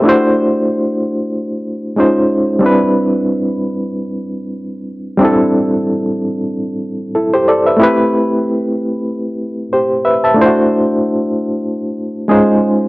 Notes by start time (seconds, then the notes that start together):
Already playing: G4
0.02 A3 D4 E4
0.07 F#4 C5
1.96 G#3 C#4 D#4 F4 C5
2.59 G3 C4 D4
2.64 E4 B4
5.17 G3 C4 D4
5.23 E4 A4
7.15 E4 A4
7.34 G4 C5
7.48 A4 D5
7.67 B4 E5
7.77 A3 C4 E4
7.82 G4 B4
9.73 G4 C5
10.05 B4 E5
10.24 E5 A5
10.34 A3 D4 E4
10.39 F4 C5
10.46 F#4
12.28 G#3 C#4 D#4 F4 G#4 C5